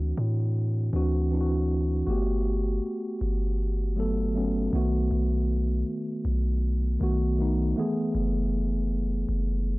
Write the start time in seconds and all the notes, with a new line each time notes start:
Already playing: D2 E3 C4 D4 F#4
0.17 A2
0.93 D2 E3 C4 D4 F#4
1.31 E3 C4 D4 E4
1.41 F#4
2.07 G1 A3 B3 F#4 G4
3.21 G1
3.96 F#3 A3 B3 A4
4.34 F#3 A3 B3 C#4
4.72 B1 D#3 A3 B3 F#4
5.11 B1
6.25 B1
7.00 B1 D#3 A3 B3 F#4
7.38 D#3 A3 B3 D#4
7.76 E3 A3 B3 G#4
8.15 F#1
9.29 F#1